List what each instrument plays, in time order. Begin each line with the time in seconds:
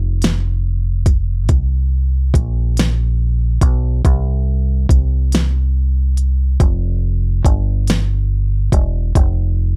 Already playing: fingered electric bass F1
0.22 snare, closed hi-hat
1.06 kick, closed hi-hat
1.49 fingered electric bass C2, kick, closed hi-hat
2.34 fingered electric bass A#1, kick, closed hi-hat
2.77 snare, closed hi-hat
3.61 fingered electric bass B1, kick, closed hi-hat
4.05 fingered electric bass C2, kick, closed hi-hat
4.89 fingered electric bass C2, kick, closed hi-hat
5.32 snare, closed hi-hat
6.17 closed hi-hat
6.60 fingered electric bass F1, kick, closed hi-hat
7.45 fingered electric bass G1, kick, closed hi-hat
7.87 snare, closed hi-hat
8.72 fingered electric bass E1, kick, closed hi-hat
9.15 fingered electric bass F1, kick, closed hi-hat